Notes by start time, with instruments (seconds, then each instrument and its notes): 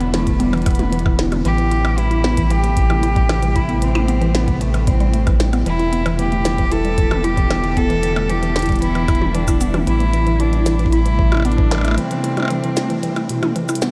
Already playing: analog synth bass E1, ambient pad D3 G3 B3 E4, cello B3
0.00 synth arpeggio sound B3, closed hi-hat
0.13 synth arpeggio sound E3, cello A3, snare, closed hi-hat
0.27 synth arpeggio sound E4, kick, closed hi-hat
0.40 cello G3, synth arpeggio sound B3, closed hi-hat
0.53 synth arpeggio sound E3, closed hi-hat, percussion blips
0.58 closed hi-hat
0.62 closed hi-hat
0.66 synth arpeggio sound E3, cello B3, kick, closed hi-hat, percussion blips
0.71 closed hi-hat
0.75 closed hi-hat
0.79 synth arpeggio sound A3, closed hi-hat, high tom
0.92 synth arpeggio sound E3, closed hi-hat
0.99 closed hi-hat
1.05 synth arpeggio sound E3, kick, percussion blips
1.19 synth arpeggio sound E4, snare, closed hi-hat
1.32 synth arpeggio sound G3, closed hi-hat, high tom, percussion blips
1.45 analog synth bass A1, ambient pad C3 A3, synth arpeggio sound E3, cello G4, closed hi-hat
1.58 synth arpeggio sound E3, closed hi-hat
1.71 synth arpeggio sound E4, closed hi-hat
1.85 synth arpeggio sound B3, closed hi-hat, percussion blips
1.98 synth arpeggio sound E3, cello E4, closed hi-hat
2.11 synth arpeggio sound E4, closed hi-hat
2.24 synth arpeggio sound B3, snare
2.37 synth arpeggio sound E3, kick, closed hi-hat
2.50 synth arpeggio sound E3, cello G4, closed hi-hat
2.64 synth arpeggio sound A3, closed hi-hat
2.77 synth arpeggio sound E3, kick, closed hi-hat
2.90 synth arpeggio sound E3, closed hi-hat, high tom, percussion blips
3.03 synth arpeggio sound E4, closed hi-hat
3.16 synth arpeggio sound G3, kick, closed hi-hat
3.29 synth arpeggio sound E3, snare, percussion blips
3.43 synth arpeggio sound E3, closed hi-hat
3.56 synth arpeggio sound E4, cello E4, kick, closed hi-hat
3.69 synth arpeggio sound B3, closed hi-hat
3.82 synth arpeggio sound E3, cello C4, closed hi-hat
3.95 synth arpeggio sound E4, closed hi-hat, high tom, percussion blips
4.08 synth arpeggio sound B3, closed hi-hat
4.21 synth arpeggio sound E3, closed hi-hat
4.35 synth arpeggio sound E3, cello B3, snare, closed hi-hat
4.48 synth arpeggio sound A3, kick, closed hi-hat
4.61 synth arpeggio sound E3, cello A3, closed hi-hat
4.74 synth arpeggio sound E3, closed hi-hat, percussion blips
4.87 synth arpeggio sound G3, cello C4, kick, closed hi-hat
5.00 synth arpeggio sound G3, closed hi-hat
5.14 synth arpeggio sound A3, closed hi-hat
5.27 synth arpeggio sound E3, kick, closed hi-hat, percussion blips
5.40 synth arpeggio sound G3, snare, closed hi-hat
5.53 synth arpeggio sound B3, closed hi-hat, percussion blips
5.66 analog synth bass E1, ambient pad D3 G3 B3 E4, synth arpeggio sound E3, cello E4, closed hi-hat
5.79 synth arpeggio sound E4, closed hi-hat
5.93 synth arpeggio sound B3, closed hi-hat
6.06 synth arpeggio sound E3, closed hi-hat, percussion blips
6.19 synth arpeggio sound E3, cello G4, closed hi-hat
6.32 synth arpeggio sound A3, closed hi-hat
6.45 synth arpeggio sound E3, snare, closed hi-hat, cabasa
6.58 synth arpeggio sound E3, kick, closed hi-hat
6.72 synth arpeggio sound E4, cello A4, closed hi-hat
6.85 synth arpeggio sound G3, closed hi-hat
6.98 synth arpeggio sound E3, kick, closed hi-hat
7.11 synth arpeggio sound E3, closed hi-hat, high tom, percussion blips
7.24 synth arpeggio sound E4, cello G4, closed hi-hat
7.37 synth arpeggio sound E3, kick, closed hi-hat
7.50 synth arpeggio sound E3, snare, closed hi-hat, percussion blips
7.64 synth arpeggio sound E4, closed hi-hat
7.77 synth arpeggio sound B3, cello A4, kick, closed hi-hat
7.90 synth arpeggio sound E3, closed hi-hat
8.03 synth arpeggio sound E3, closed hi-hat
8.16 synth arpeggio sound A3, closed hi-hat, percussion blips
8.29 synth arpeggio sound E3, cello G4, closed hi-hat
8.42 synth arpeggio sound E3, closed hi-hat
8.56 synth arpeggio sound E4, snare, closed hi-hat
8.59 closed hi-hat
8.62 closed hi-hat
8.66 synth arpeggio sound G3, kick, closed hi-hat
8.69 closed hi-hat
8.72 closed hi-hat
8.76 closed hi-hat
8.79 synth arpeggio sound E3, cello E4, closed hi-hat
8.82 closed hi-hat
8.95 synth arpeggio sound E3, closed hi-hat, percussion blips
9.08 synth arpeggio sound E4, kick, closed hi-hat, percussion blips
9.15 closed hi-hat
9.21 synth arpeggio sound E3, high tom
9.34 synth arpeggio sound E3, cello D4, closed hi-hat
9.48 synth arpeggio sound E4, kick, closed hi-hat, cabasa, percussion blips
9.61 synth arpeggio sound B3, closed hi-hat, cabasa
9.74 synth arpeggio sound E3, closed hi-hat, high tom, percussion blips
9.87 analog synth bass A1, ambient pad C3 A3, synth arpeggio sound E3, cello E4, closed hi-hat
10.00 synth arpeggio sound A3, closed hi-hat
10.13 synth arpeggio sound E3, closed hi-hat
10.27 synth arpeggio sound E3, closed hi-hat
10.40 cello D4, synth arpeggio sound E4, closed hi-hat
10.53 synth arpeggio sound G3, closed hi-hat
10.66 synth arpeggio sound E3, snare, closed hi-hat, cabasa
10.79 synth arpeggio sound E3, closed hi-hat
10.86 kick
10.92 synth arpeggio sound E4, cello E4, closed hi-hat
11.06 synth arpeggio sound E3, closed hi-hat
11.19 synth arpeggio sound E3, kick
11.32 synth arpeggio sound E4, closed hi-hat, high tom, percussion blips
11.35 percussion blips
11.37 percussion blips
11.40 percussion blips
11.42 synth arpeggio sound B3, cello D4, closed hi-hat, percussion blips
11.52 closed hi-hat
11.58 synth arpeggio sound E3, kick
11.71 synth arpeggio sound E3, snare, closed hi-hat, percussion blips
11.75 percussion blips
11.78 percussion blips
11.81 synth arpeggio sound A3, closed hi-hat, percussion blips
11.85 percussion blips
11.88 percussion blips
11.91 percussion blips
11.94 synth arpeggio sound E3, cello C4, closed hi-hat, percussion blips
12.11 synth arpeggio sound E3, closed hi-hat
12.24 synth arpeggio sound E4, closed hi-hat
12.37 synth arpeggio sound G3, closed hi-hat, high tom, percussion blips
12.40 percussion blips
12.43 percussion blips
12.45 percussion blips
12.48 synth arpeggio sound E3, closed hi-hat, percussion blips
12.63 synth arpeggio sound E3, closed hi-hat
12.77 synth arpeggio sound E4, snare, closed hi-hat, cabasa
12.90 synth arpeggio sound E3, closed hi-hat
13.03 synth arpeggio sound E3, closed hi-hat
13.16 synth arpeggio sound E4, closed hi-hat, percussion blips
13.29 synth arpeggio sound B2, closed hi-hat
13.43 synth arpeggio sound E3, closed hi-hat, high tom, percussion blips
13.56 synth arpeggio sound E3, closed hi-hat
13.69 synth arpeggio sound E4, closed hi-hat, cabasa, percussion blips
13.75 closed hi-hat
13.82 synth arpeggio sound B3, snare, cabasa